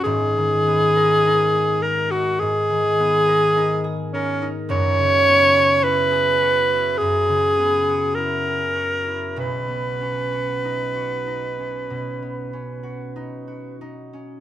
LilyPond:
<<
  \new Staff \with { instrumentName = "Alto saxophone" } { \time 4/4 \key b \major \tempo 4 = 51 gis'4. ais'16 fis'16 gis'4. cis'16 r16 | cis''4 b'4 gis'4 ais'4 | b'2.~ b'8 r8 | }
  \new Staff \with { instrumentName = "Harp" } { \time 4/4 \key b \major <gis,, gis, b>16 dis16 b16 ais'16 dis'16 gis'16 ais'16 dis'16 gis,16 dis16 b16 ais'16 dis'16 gis'16 ais'16 dis'16 | <fis,, fis,>16 cis16 b16 fis'16 e'16 gis'16 fis'16 e'16 fis,16 cis16 b16 fis'16 e'16 gis'16 fis'16 e'16 | <b,, b,>16 b16 cis'16 fis'16 dis'16 fis'16 dis'16 cis'16 b,16 b16 cis'16 fis'16 dis'16 fis'16 dis'16 cis'16 | }
>>